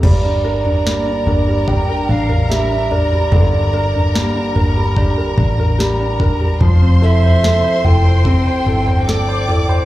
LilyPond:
<<
  \new Staff \with { instrumentName = "Violin section" } { \time 4/4 \key g \dorian \tempo 4 = 73 <bes' bes''>1~ | <bes' bes''>1 | <c'' c'''>2. <d'' d'''>4 | }
  \new Staff \with { instrumentName = "Recorder" } { \time 4/4 \key g \dorian d''2 g''8 f''8 e''8 d''8~ | d''4. r2 r8 | r8 e''4 g''2~ g''8 | }
  \new Staff \with { instrumentName = "Grand piano" } { \time 4/4 \key g \dorian g16 d'16 bes'16 d'16 g16 d'16 bes'16 g16 d'16 bes'16 d'16 bes'16 g16 d'16 bes'16 g16 | d16 d'16 bes'16 d'16 g16 d'16 bes'16 g16 d'16 bes'16 d'16 bes'16 g16 d'16 bes'16 g16 | f16 c'16 a'16 c''16 a'16 c''16 a'16 c''16 c'16 c''16 a'16 c''16 a'16 c''16 a'16 c''16 | }
  \new Staff \with { instrumentName = "Nylon-string guitar" } { \time 4/4 \key g \dorian g,8 d'8 bes8 d'8 g'8 d'8 g'8 d'8 | g,8 d'8 bes8 d'8 g'8 d'8 g'8 d'8 | f8 e'8 c'8 e'8 a'8 e'8 a'8 e'8 | }
  \new Staff \with { instrumentName = "Fingered electric bass" } { \clef bass \time 4/4 \key g \dorian g,,4. g,,8. r16 a,,4. | g,,4~ g,,16 r16 g,,8. r16 a,,4. | f,,4~ f,,16 r16 f,,8. r16 g,,4. | }
  \new DrumStaff \with { instrumentName = "Drums" } \drummode { \time 4/4 <cymc bd tomfh>8. tomfh16 sn8 tomfh8 <bd tomfh>8. tomfh16 sn8 tomfh16 tomfh16 | <bd tomfh>8. tomfh16 sn8 tomfh8 <bd tomfh>8 bd16 tomfh16 sn8 <bd tomfh>16 tomfh16 | <bd tomfh>8. tomfh16 sn8 tomfh8 <bd tomfh>8. tomfh16 sn8 tomfh16 tomfh16 | }
>>